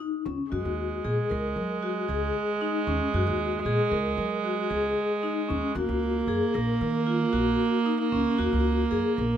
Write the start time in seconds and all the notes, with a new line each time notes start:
0.00 D#4
0.26 C#2 C#4
0.51 F#2 G#3 F#4
0.65 D#2
1.05 A#2 G#4
1.30 C#2 A#4
1.56 F#3
1.83 F#4
2.08 C#2 G#4
2.61 D#4
2.87 D#2 C#4
3.14 F#2 F#4
3.27 D#2
3.65 A#2 G#4
3.92 C#2 A#4
4.17 F#3
4.44 F#4
4.70 C#2 G#4
5.23 D#4
5.48 D#2 C#4
5.75 D#2 A#3 F#4
5.89 C#2
6.27 F#2 G#4
6.54 A#1 A#4
6.81 D#3
7.07 F4
7.33 A#1 F#4
7.86 D#4
8.12 C#2 C#4
8.38 D#2 F#4
8.53 C#2
8.91 F#2 G#4
9.17 A#1 A#4